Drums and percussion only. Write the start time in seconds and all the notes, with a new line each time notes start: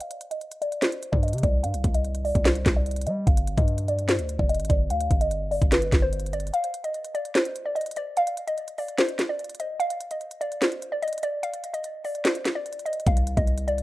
0.00 closed hi-hat
0.11 closed hi-hat
0.21 closed hi-hat
0.31 closed hi-hat
0.41 closed hi-hat
0.52 closed hi-hat
0.62 closed hi-hat
0.72 closed hi-hat
0.82 snare, clap, closed hi-hat
0.92 closed hi-hat
1.03 closed hi-hat
1.13 kick
1.23 closed hi-hat
1.28 closed hi-hat
1.33 closed hi-hat
1.38 closed hi-hat
1.43 kick, closed hi-hat
1.64 closed hi-hat
1.74 closed hi-hat
1.84 kick, closed hi-hat
1.94 closed hi-hat
2.05 closed hi-hat
2.15 closed hi-hat
2.25 open hi-hat
2.35 kick, closed hi-hat
2.45 snare, clap, closed hi-hat
2.55 closed hi-hat
2.66 kick, snare, clap, closed hi-hat
2.86 closed hi-hat
2.91 closed hi-hat
2.96 closed hi-hat
3.01 closed hi-hat
3.07 closed hi-hat
3.27 kick, closed hi-hat
3.37 closed hi-hat
3.47 closed hi-hat
3.58 kick, closed hi-hat
3.68 closed hi-hat
3.78 closed hi-hat
3.88 closed hi-hat
3.99 closed hi-hat
4.09 snare, clap, closed hi-hat
4.19 closed hi-hat
4.29 closed hi-hat
4.39 kick
4.49 closed hi-hat
4.55 closed hi-hat
4.60 closed hi-hat
4.65 closed hi-hat
4.70 kick, closed hi-hat
4.90 closed hi-hat
5.01 closed hi-hat
5.11 kick, closed hi-hat
5.21 closed hi-hat
5.31 closed hi-hat
5.52 open hi-hat
5.62 kick, closed hi-hat
5.72 snare, clap, closed hi-hat
5.82 closed hi-hat
5.92 kick, snare, clap, closed hi-hat
6.13 closed hi-hat
6.20 closed hi-hat
6.26 closed hi-hat
6.33 closed hi-hat
6.40 closed hi-hat
6.47 closed hi-hat
6.54 closed hi-hat
6.64 closed hi-hat
6.74 closed hi-hat
6.84 closed hi-hat
6.94 closed hi-hat
7.05 closed hi-hat
7.15 closed hi-hat
7.25 closed hi-hat
7.35 snare, clap, closed hi-hat
7.45 closed hi-hat
7.56 closed hi-hat
7.76 closed hi-hat
7.81 closed hi-hat
7.86 closed hi-hat
7.91 closed hi-hat
7.96 closed hi-hat
8.17 closed hi-hat
8.27 closed hi-hat
8.37 closed hi-hat
8.48 closed hi-hat
8.58 closed hi-hat
8.68 closed hi-hat
8.78 open hi-hat
8.88 closed hi-hat
8.98 snare, clap, closed hi-hat
9.09 closed hi-hat
9.19 snare, clap, closed hi-hat
9.39 closed hi-hat
9.44 closed hi-hat
9.50 closed hi-hat
9.55 closed hi-hat
9.60 closed hi-hat
9.80 closed hi-hat
9.90 closed hi-hat
10.01 closed hi-hat
10.11 closed hi-hat
10.21 closed hi-hat
10.31 closed hi-hat
10.41 closed hi-hat
10.52 closed hi-hat
10.62 snare, clap, closed hi-hat
10.72 closed hi-hat
10.82 closed hi-hat
11.03 closed hi-hat
11.08 closed hi-hat
11.13 closed hi-hat
11.18 closed hi-hat
11.23 closed hi-hat
11.43 closed hi-hat
11.54 closed hi-hat
11.64 closed hi-hat
11.74 closed hi-hat
11.84 closed hi-hat
12.05 open hi-hat
12.15 closed hi-hat
12.25 snare, clap, closed hi-hat
12.35 closed hi-hat
12.45 snare, clap, closed hi-hat
12.66 closed hi-hat
12.73 closed hi-hat
12.79 closed hi-hat
12.86 closed hi-hat
12.93 closed hi-hat
13.00 closed hi-hat
13.07 kick, closed hi-hat
13.17 closed hi-hat
13.27 closed hi-hat
13.37 kick, closed hi-hat
13.47 closed hi-hat
13.58 closed hi-hat
13.68 closed hi-hat
13.78 closed hi-hat